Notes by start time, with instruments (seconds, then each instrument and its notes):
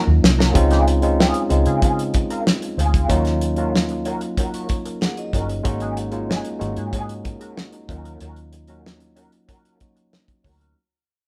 Already playing: tine electric piano F3 F#3 A#3 C#4 D#4 F4
0.07 fingered electric bass D#2
0.23 fingered electric bass C2, muted clean electric guitar stroke, snare
0.39 clean electric guitar C#4 F#4 A#4, snare
0.54 fingered electric bass C#2, tine electric piano G#3 C4 C#4 D#4 F4, muted clean electric guitar stroke, kick, closed hi-hat
0.70 clean electric guitar C4 F4 G#4, snare, closed hi-hat
0.88 muted clean electric guitar stroke, closed hi-hat
1.02 tine electric piano G#3 C4 C#4 D#4 F4, muted clean electric guitar stroke, closed hi-hat
1.19 clean electric guitar C4 F4 G#4, snare
1.34 closed hi-hat
1.49 fingered electric bass C#2, tine electric piano G#3 C4 C#4 D#4 F4, muted clean electric guitar stroke, closed hi-hat
1.66 fingered electric bass C#3, clean electric guitar C4 F4 G#4, closed hi-hat
1.82 clean electric guitar C4 F4 G#4, kick, closed hi-hat
1.99 closed hi-hat
2.14 muted clean electric guitar stroke, kick, closed hi-hat
2.30 clean electric guitar C4 F4 A#4, closed hi-hat
2.46 muted clean electric guitar stroke, snare
2.62 muted clean electric guitar stroke, closed hi-hat
2.78 fingered electric bass D2, clean electric guitar C4 F4 G#4, closed hi-hat
2.94 clean electric guitar C4 F4 G#4, kick, closed hi-hat
3.08 fingered electric bass D#2, tine electric piano F#3 A#3 C#4 D#4 F4, clean electric guitar C#4 F#4 A#4, kick, closed hi-hat
3.25 snare, closed hi-hat
3.41 muted clean electric guitar stroke, closed hi-hat
3.56 tine electric piano F#3 A#3 C#4 D#4 F4, clean electric guitar C#4 F#4 A#4, closed hi-hat
3.76 snare
3.89 muted clean electric guitar stroke, closed hi-hat
4.05 clean electric guitar C#4 F#4 A#4, closed hi-hat
4.21 muted clean electric guitar stroke, closed hi-hat
4.37 clean electric guitar C#4 F#4 A#4, kick, closed hi-hat
4.54 vibraphone C#6, closed hi-hat
4.69 tine electric piano C#5, vibraphone A#5, muted clean electric guitar stroke, kick, closed hi-hat
4.85 tine electric piano A#4, muted clean electric guitar stroke, closed hi-hat
5.01 tine electric piano G#4, vibraphone F#5, muted clean electric guitar stroke, snare
5.17 tine electric piano F#4, vibraphone D#5, closed hi-hat
5.33 fingered electric bass G1, clean electric guitar C#4 F#4 A#4, tine electric piano D#4, kick, closed hi-hat
5.48 tine electric piano C#4, muted clean electric guitar stroke, closed hi-hat
5.63 fingered electric bass G#1, tine electric piano G#3 A#3 C#4 D#4 F#4, muted clean electric guitar stroke, kick, closed hi-hat
5.80 clean electric guitar C#4 F#4 G#4, closed hi-hat
5.97 muted clean electric guitar stroke, closed hi-hat
6.11 tine electric piano G#3 A#3 C#4 D#4 F4, muted clean electric guitar stroke, closed hi-hat
6.29 clean electric guitar C#4 F#4 G#4, snare
6.45 closed hi-hat
6.59 fingered electric bass G#1, tine electric piano G#3 A#3 C#4 D#4 F#4, muted clean electric guitar stroke, closed hi-hat
6.76 fingered electric bass G#2, clean electric guitar C#4 F#4 G#4, closed hi-hat
6.93 clean electric guitar C#4 F#4 G#4, kick, closed hi-hat
7.08 tine electric piano C#5, closed hi-hat
7.24 tine electric piano A#4, muted clean electric guitar stroke, kick, closed hi-hat
7.40 clean electric guitar C#4 F#4 A#4, tine electric piano G#4, closed hi-hat
7.56 tine electric piano F#4, muted clean electric guitar stroke, snare
7.72 tine electric piano D#4, muted clean electric guitar stroke, closed hi-hat
7.88 fingered electric bass D#2, tine electric piano F#3 A#3 C#4 D#4 F4, clean electric guitar C#4 F#4 A#4, kick, closed hi-hat
8.04 clean electric guitar C#4 F#4 A#4, closed hi-hat
8.21 fingered electric bass D#2, clean electric guitar C#4 F#4 A#4, closed hi-hat
8.36 closed hi-hat
8.52 muted clean electric guitar stroke, closed hi-hat
8.68 tine electric piano F#3 A#3 C#4 D#4 F#4, clean electric guitar C#4 F#4 A#4, closed hi-hat
8.86 snare
9.00 muted clean electric guitar stroke, closed hi-hat
9.16 clean electric guitar C#4 F#4 A#4, closed hi-hat
9.32 muted clean electric guitar stroke, closed hi-hat
9.48 clean electric guitar C#4 F#4 A#4, kick, closed hi-hat
9.65 closed hi-hat
9.80 tine electric piano F#3 A#3 C#4 D#4 F#4, muted clean electric guitar stroke, kick, closed hi-hat
9.96 muted clean electric guitar stroke, closed hi-hat
10.12 muted clean electric guitar stroke, snare
10.28 muted clean electric guitar stroke, kick, closed hi-hat
10.44 fingered electric bass D2, clean electric guitar C#4 F#4 A#4, kick, open hi-hat
10.60 clean electric guitar C#4 F#4 A#4, closed hi-hat